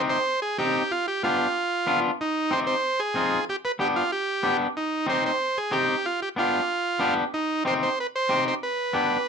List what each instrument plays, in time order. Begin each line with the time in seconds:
Already playing: clean electric guitar C4 D#4 G4
0.09 transistor combo organ C5
0.42 transistor combo organ G#4
0.58 clean electric guitar C4 D#4 G4, transistor combo organ G4
0.91 transistor combo organ F4
1.08 transistor combo organ G4
1.23 clean electric guitar B3 D4 G4, transistor combo organ F4
1.87 clean electric guitar B3 D4 F4
2.21 transistor combo organ D#4
2.51 clean electric guitar C4 D#4 G4, transistor combo organ C5
2.67 transistor combo organ C5
3.00 transistor combo organ G#4
3.15 clean electric guitar C4 D#4 F4
3.49 transistor combo organ G4
3.65 transistor combo organ B4
3.79 clean electric guitar B3 D4 G4, transistor combo organ G4
3.96 transistor combo organ F4
4.12 transistor combo organ G4
4.43 clean electric guitar B3 D4 G4
4.77 transistor combo organ D#4
5.07 clean electric guitar C4 D#4 G4, transistor combo organ C5
5.26 transistor combo organ C5
5.58 transistor combo organ G#4
5.71 clean electric guitar C4 D#4 G4, transistor combo organ G4
6.06 transistor combo organ F4
6.22 transistor combo organ G4
6.36 clean electric guitar B3 D4 G4, transistor combo organ F4
6.99 clean electric guitar B3 D4 G4
7.34 transistor combo organ D#4
7.65 clean electric guitar C4 D#4 G4, transistor combo organ C5
7.83 transistor combo organ C5
8.00 transistor combo organ B4
8.16 transistor combo organ C5
8.29 clean electric guitar C4 D#4 G4
8.48 transistor combo organ C5
8.63 transistor combo organ B4
8.93 clean electric guitar B3 D4 G4